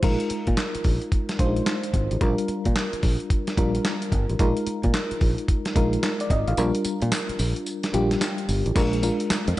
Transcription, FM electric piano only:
0, 0, Header, 1, 2, 480
1, 0, Start_track
1, 0, Tempo, 545455
1, 26, Time_signature, 4, 2, 24, 8
1, 8444, End_track
2, 0, Start_track
2, 0, Title_t, "FM electric piano"
2, 0, Program_c, 0, 5
2, 0, Control_c, 0, 64, 127
2, 22, Note_on_c, 0, 56, 86
2, 25, Note_on_c, 0, 63, 75
2, 30, Note_on_c, 0, 65, 81
2, 33, Note_on_c, 0, 70, 96
2, 36, Control_c, 0, 64, 0
2, 171, Control_c, 0, 64, 127
2, 911, Note_off_c, 0, 56, 0
2, 912, Note_off_c, 0, 63, 0
2, 914, Note_off_c, 0, 65, 0
2, 916, Note_off_c, 0, 70, 0
2, 1224, Note_on_c, 0, 56, 84
2, 1226, Note_on_c, 0, 62, 63
2, 1229, Note_on_c, 0, 65, 79
2, 1233, Note_on_c, 0, 72, 85
2, 1283, Note_on_c, 0, 63, 74
2, 1298, Note_off_c, 0, 62, 0
2, 1890, Note_off_c, 0, 56, 0
2, 1893, Note_off_c, 0, 65, 0
2, 1894, Note_off_c, 0, 72, 0
2, 1919, Note_off_c, 0, 63, 0
2, 1945, Note_on_c, 0, 55, 91
2, 1948, Note_on_c, 0, 62, 82
2, 1952, Note_on_c, 0, 65, 80
2, 1955, Control_c, 0, 64, 0
2, 1955, Note_on_c, 0, 70, 97
2, 2098, Control_c, 0, 64, 127
2, 2832, Note_off_c, 0, 55, 0
2, 2834, Note_off_c, 0, 62, 0
2, 2836, Note_off_c, 0, 65, 0
2, 2837, Note_off_c, 0, 70, 0
2, 3145, Note_on_c, 0, 55, 92
2, 3148, Note_on_c, 0, 62, 73
2, 3151, Note_on_c, 0, 65, 77
2, 3155, Note_on_c, 0, 70, 92
2, 3810, Note_off_c, 0, 55, 0
2, 3812, Note_off_c, 0, 62, 0
2, 3813, Note_off_c, 0, 65, 0
2, 3816, Note_off_c, 0, 70, 0
2, 3864, Note_on_c, 0, 56, 86
2, 3868, Note_on_c, 0, 63, 82
2, 3871, Note_on_c, 0, 65, 80
2, 3876, Note_on_c, 0, 70, 99
2, 3877, Control_c, 0, 64, 0
2, 4049, Control_c, 0, 64, 127
2, 4752, Note_off_c, 0, 56, 0
2, 4754, Note_off_c, 0, 63, 0
2, 4755, Note_off_c, 0, 65, 0
2, 4757, Note_off_c, 0, 70, 0
2, 5064, Note_on_c, 0, 56, 93
2, 5068, Note_on_c, 0, 63, 78
2, 5071, Note_on_c, 0, 65, 82
2, 5075, Note_on_c, 0, 70, 94
2, 5301, Note_off_c, 0, 70, 0
2, 5312, Note_on_c, 0, 70, 65
2, 5453, Note_off_c, 0, 70, 0
2, 5463, Note_on_c, 0, 74, 74
2, 5544, Note_off_c, 0, 74, 0
2, 5552, Note_on_c, 0, 75, 71
2, 5693, Note_off_c, 0, 75, 0
2, 5701, Note_on_c, 0, 77, 66
2, 5730, Note_off_c, 0, 56, 0
2, 5732, Note_off_c, 0, 63, 0
2, 5734, Note_off_c, 0, 65, 0
2, 5787, Note_on_c, 0, 55, 87
2, 5790, Note_on_c, 0, 62, 81
2, 5793, Note_on_c, 0, 65, 83
2, 5796, Control_c, 0, 64, 0
2, 5797, Note_on_c, 0, 70, 92
2, 5927, Note_off_c, 0, 77, 0
2, 5975, Control_c, 0, 64, 127
2, 6673, Note_off_c, 0, 55, 0
2, 6675, Note_off_c, 0, 62, 0
2, 6676, Note_off_c, 0, 65, 0
2, 6678, Note_off_c, 0, 70, 0
2, 6982, Note_on_c, 0, 55, 88
2, 6985, Note_on_c, 0, 62, 75
2, 6989, Note_on_c, 0, 65, 80
2, 6991, Note_on_c, 0, 67, 103
2, 7649, Note_off_c, 0, 55, 0
2, 7651, Note_off_c, 0, 62, 0
2, 7652, Note_off_c, 0, 65, 0
2, 7654, Note_off_c, 0, 67, 0
2, 7702, Note_on_c, 0, 56, 94
2, 7707, Note_on_c, 0, 62, 84
2, 7710, Note_on_c, 0, 65, 83
2, 7713, Note_on_c, 0, 70, 102
2, 7716, Control_c, 0, 64, 0
2, 7895, Control_c, 0, 64, 127
2, 7926, Note_off_c, 0, 56, 0
2, 7928, Note_off_c, 0, 62, 0
2, 7929, Note_off_c, 0, 65, 0
2, 7931, Note_off_c, 0, 70, 0
2, 7944, Note_on_c, 0, 56, 81
2, 7946, Note_on_c, 0, 62, 69
2, 7949, Note_on_c, 0, 65, 74
2, 7954, Note_on_c, 0, 70, 87
2, 8388, Note_off_c, 0, 56, 0
2, 8389, Note_off_c, 0, 62, 0
2, 8391, Note_off_c, 0, 65, 0
2, 8393, Note_off_c, 0, 70, 0
2, 8437, Control_c, 0, 64, 0
2, 8444, End_track
0, 0, End_of_file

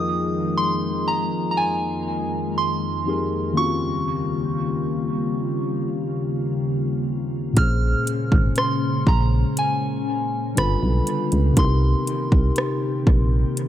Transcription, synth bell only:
0, 0, Header, 1, 2, 480
1, 0, Start_track
1, 0, Tempo, 1000000
1, 1713, Time_signature, 4, 2, 24, 8
1, 6567, End_track
2, 0, Start_track
2, 0, Title_t, "Synth bell"
2, 0, Program_c, 0, 98
2, 0, Note_on_c, 0, 87, 105
2, 276, Note_on_c, 0, 84, 94
2, 289, Note_off_c, 0, 87, 0
2, 517, Note_on_c, 0, 82, 87
2, 521, Note_off_c, 0, 84, 0
2, 707, Note_off_c, 0, 82, 0
2, 726, Note_on_c, 0, 82, 67
2, 755, Note_on_c, 0, 80, 83
2, 756, Note_off_c, 0, 82, 0
2, 1237, Note_on_c, 0, 84, 86
2, 1248, Note_off_c, 0, 80, 0
2, 1715, Note_on_c, 0, 85, 91
2, 1729, Note_off_c, 0, 84, 0
2, 2655, Note_off_c, 0, 85, 0
2, 3637, Note_on_c, 0, 89, 106
2, 4120, Note_on_c, 0, 84, 91
2, 4129, Note_off_c, 0, 89, 0
2, 4360, Note_on_c, 0, 82, 87
2, 4363, Note_off_c, 0, 84, 0
2, 4427, Note_off_c, 0, 82, 0
2, 4601, Note_on_c, 0, 80, 82
2, 5082, Note_on_c, 0, 83, 85
2, 5091, Note_off_c, 0, 80, 0
2, 5538, Note_off_c, 0, 83, 0
2, 5562, Note_on_c, 0, 84, 84
2, 6498, Note_off_c, 0, 84, 0
2, 6567, End_track
0, 0, End_of_file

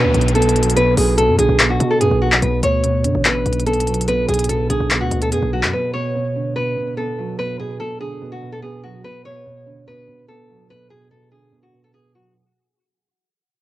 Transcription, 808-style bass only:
0, 0, Header, 1, 2, 480
1, 0, Start_track
1, 0, Tempo, 413793
1, 890, Time_signature, 4, 2, 24, 8
1, 15793, End_track
2, 0, Start_track
2, 0, Title_t, "808-style bass"
2, 0, Program_c, 0, 38
2, 49, Note_on_c, 0, 38, 94
2, 163, Note_off_c, 0, 38, 0
2, 170, Note_on_c, 0, 35, 101
2, 1091, Note_off_c, 0, 35, 0
2, 1130, Note_on_c, 0, 35, 105
2, 1489, Note_on_c, 0, 42, 96
2, 1507, Note_off_c, 0, 35, 0
2, 1603, Note_off_c, 0, 42, 0
2, 1609, Note_on_c, 0, 35, 99
2, 1721, Note_off_c, 0, 35, 0
2, 1728, Note_on_c, 0, 35, 101
2, 2074, Note_off_c, 0, 35, 0
2, 2088, Note_on_c, 0, 47, 103
2, 2330, Note_on_c, 0, 42, 99
2, 2347, Note_off_c, 0, 47, 0
2, 2444, Note_off_c, 0, 42, 0
2, 2449, Note_on_c, 0, 35, 99
2, 2795, Note_off_c, 0, 35, 0
2, 2811, Note_on_c, 0, 35, 113
2, 3041, Note_off_c, 0, 35, 0
2, 3050, Note_on_c, 0, 38, 105
2, 3530, Note_on_c, 0, 42, 98
2, 3548, Note_off_c, 0, 38, 0
2, 3644, Note_off_c, 0, 42, 0
2, 3652, Note_on_c, 0, 33, 105
2, 3997, Note_off_c, 0, 33, 0
2, 4011, Note_on_c, 0, 35, 101
2, 4932, Note_off_c, 0, 35, 0
2, 4972, Note_on_c, 0, 35, 106
2, 5431, Note_off_c, 0, 35, 0
2, 5451, Note_on_c, 0, 35, 100
2, 5565, Note_off_c, 0, 35, 0
2, 5571, Note_on_c, 0, 35, 108
2, 5812, Note_on_c, 0, 38, 97
2, 5829, Note_off_c, 0, 35, 0
2, 5925, Note_off_c, 0, 38, 0
2, 5931, Note_on_c, 0, 38, 105
2, 6171, Note_on_c, 0, 42, 98
2, 6188, Note_off_c, 0, 38, 0
2, 6284, Note_off_c, 0, 42, 0
2, 6291, Note_on_c, 0, 35, 104
2, 6530, Note_on_c, 0, 42, 97
2, 6548, Note_off_c, 0, 35, 0
2, 6644, Note_off_c, 0, 42, 0
2, 15793, End_track
0, 0, End_of_file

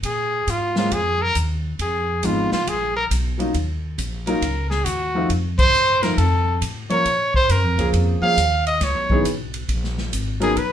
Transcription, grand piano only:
0, 0, Header, 1, 2, 480
1, 0, Start_track
1, 0, Key_signature, -5, "minor"
1, 0, Tempo, 438276
1, 42, Time_signature, 4, 2, 24, 8
1, 11744, End_track
2, 0, Start_track
2, 0, Title_t, "Grand piano"
2, 0, Program_c, 0, 0
2, 834, Note_on_c, 0, 56, 63
2, 841, Note_on_c, 0, 58, 53
2, 850, Note_on_c, 0, 60, 56
2, 853, Note_on_c, 0, 61, 54
2, 859, Note_on_c, 0, 65, 68
2, 985, Note_off_c, 0, 56, 0
2, 989, Note_off_c, 0, 58, 0
2, 993, Note_off_c, 0, 60, 0
2, 995, Note_off_c, 0, 61, 0
2, 998, Note_off_c, 0, 65, 0
2, 2445, Note_on_c, 0, 53, 54
2, 2446, Note_on_c, 0, 56, 54
2, 2455, Note_on_c, 0, 59, 52
2, 2460, Note_on_c, 0, 63, 53
2, 2460, Note_on_c, 0, 65, 65
2, 2727, Note_off_c, 0, 53, 0
2, 2727, Note_off_c, 0, 56, 0
2, 2732, Note_off_c, 0, 59, 0
2, 2734, Note_off_c, 0, 63, 0
2, 2734, Note_off_c, 0, 65, 0
2, 3700, Note_on_c, 0, 54, 60
2, 3708, Note_on_c, 0, 58, 52
2, 3713, Note_on_c, 0, 61, 58
2, 3718, Note_on_c, 0, 65, 60
2, 3719, Note_on_c, 0, 63, 58
2, 3859, Note_off_c, 0, 54, 0
2, 3863, Note_off_c, 0, 58, 0
2, 3865, Note_off_c, 0, 61, 0
2, 3868, Note_off_c, 0, 63, 0
2, 3868, Note_off_c, 0, 65, 0
2, 4674, Note_on_c, 0, 54, 63
2, 4677, Note_on_c, 0, 58, 63
2, 4678, Note_on_c, 0, 61, 62
2, 4689, Note_on_c, 0, 63, 64
2, 4694, Note_on_c, 0, 65, 80
2, 4826, Note_off_c, 0, 54, 0
2, 4827, Note_off_c, 0, 58, 0
2, 4828, Note_off_c, 0, 61, 0
2, 4834, Note_off_c, 0, 63, 0
2, 4836, Note_off_c, 0, 65, 0
2, 5635, Note_on_c, 0, 53, 68
2, 5641, Note_on_c, 0, 57, 60
2, 5649, Note_on_c, 0, 63, 55
2, 5650, Note_on_c, 0, 60, 65
2, 5654, Note_on_c, 0, 65, 77
2, 5786, Note_off_c, 0, 53, 0
2, 5789, Note_off_c, 0, 57, 0
2, 5794, Note_off_c, 0, 60, 0
2, 5794, Note_off_c, 0, 63, 0
2, 5796, Note_off_c, 0, 65, 0
2, 6596, Note_on_c, 0, 53, 67
2, 6602, Note_on_c, 0, 60, 57
2, 6605, Note_on_c, 0, 57, 56
2, 6612, Note_on_c, 0, 63, 53
2, 6617, Note_on_c, 0, 65, 66
2, 6747, Note_off_c, 0, 53, 0
2, 6750, Note_off_c, 0, 60, 0
2, 6752, Note_off_c, 0, 57, 0
2, 6755, Note_off_c, 0, 63, 0
2, 6757, Note_off_c, 0, 65, 0
2, 7551, Note_on_c, 0, 53, 72
2, 7558, Note_on_c, 0, 58, 64
2, 7561, Note_on_c, 0, 60, 63
2, 7569, Note_on_c, 0, 61, 65
2, 7577, Note_on_c, 0, 70, 71
2, 7705, Note_off_c, 0, 53, 0
2, 7708, Note_off_c, 0, 58, 0
2, 7710, Note_off_c, 0, 60, 0
2, 7714, Note_off_c, 0, 61, 0
2, 7718, Note_off_c, 0, 70, 0
2, 8519, Note_on_c, 0, 53, 64
2, 8524, Note_on_c, 0, 58, 57
2, 8528, Note_on_c, 0, 60, 60
2, 8531, Note_on_c, 0, 61, 62
2, 8537, Note_on_c, 0, 68, 67
2, 8967, Note_off_c, 0, 53, 0
2, 8970, Note_off_c, 0, 58, 0
2, 8972, Note_off_c, 0, 60, 0
2, 8974, Note_off_c, 0, 61, 0
2, 8976, Note_off_c, 0, 68, 0
2, 8997, Note_on_c, 0, 53, 66
2, 9006, Note_on_c, 0, 58, 62
2, 9009, Note_on_c, 0, 60, 63
2, 9016, Note_on_c, 0, 61, 60
2, 9020, Note_on_c, 0, 68, 71
2, 9148, Note_off_c, 0, 53, 0
2, 9152, Note_off_c, 0, 58, 0
2, 9154, Note_off_c, 0, 60, 0
2, 9157, Note_off_c, 0, 61, 0
2, 9159, Note_off_c, 0, 68, 0
2, 9973, Note_on_c, 0, 52, 66
2, 9976, Note_on_c, 0, 59, 64
2, 9981, Note_on_c, 0, 61, 65
2, 9983, Note_on_c, 0, 63, 58
2, 9992, Note_on_c, 0, 68, 73
2, 10116, Note_off_c, 0, 52, 0
2, 10117, Note_off_c, 0, 59, 0
2, 10120, Note_off_c, 0, 61, 0
2, 10121, Note_off_c, 0, 63, 0
2, 10125, Note_off_c, 0, 68, 0
2, 11392, Note_on_c, 0, 54, 74
2, 11394, Note_on_c, 0, 59, 68
2, 11395, Note_on_c, 0, 61, 65
2, 11406, Note_on_c, 0, 70, 83
2, 11409, Note_on_c, 0, 63, 68
2, 11545, Note_off_c, 0, 54, 0
2, 11546, Note_off_c, 0, 59, 0
2, 11547, Note_off_c, 0, 61, 0
2, 11552, Note_off_c, 0, 70, 0
2, 11554, Note_off_c, 0, 63, 0
2, 11744, End_track
0, 0, End_of_file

